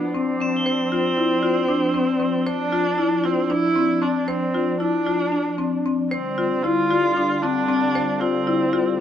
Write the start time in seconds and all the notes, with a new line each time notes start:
Already playing: F3 B3 D4 D5 C7
0.14 C4
0.40 C4 E7
0.57 G7
0.66 C5
0.92 F4
1.17 E4
1.43 F4
1.68 D4
1.94 C4
2.20 C4
2.46 D4 C5
2.72 F4
2.98 E4
3.24 C4 F4
3.50 D4 E4
3.76 C4
4.02 C4 D4
4.27 C4 C5
4.54 F4
4.80 D4 E4
5.07 F4
5.32 D4
5.58 C4
5.86 C4
6.11 D3 G3 C4 F4 C5
6.38 F4
6.62 E4 F4
6.91 F4
7.17 D4
7.42 C4 D4
7.69 C4
7.95 C5
8.20 C4 F4
8.47 E4
8.73 F4